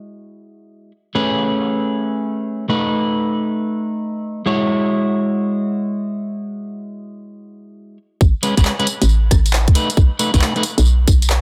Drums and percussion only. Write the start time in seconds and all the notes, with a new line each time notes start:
8.21 kick, tambourine
8.43 closed hi-hat, tambourine
8.57 kick, cross-stick, closed hi-hat, tambourine
8.65 clap, tambourine
8.80 closed hi-hat
8.87 closed hi-hat, tambourine
9.02 closed hi-hat, tambourine
9.09 tambourine
9.31 kick, cross-stick, closed hi-hat, tambourine
9.46 closed hi-hat, tambourine
9.53 clap, tambourine
9.68 kick, closed hi-hat
9.75 closed hi-hat, tambourine
9.90 closed hi-hat, tambourine
9.97 kick, tambourine
10.19 closed hi-hat, tambourine
10.34 kick, closed hi-hat, tambourine
10.41 clap, tambourine
10.56 closed hi-hat
10.63 closed hi-hat, tambourine
10.78 closed hi-hat, tambourine
10.85 tambourine
11.08 kick, closed hi-hat, tambourine
11.22 closed hi-hat, tambourine
11.30 clap, tambourine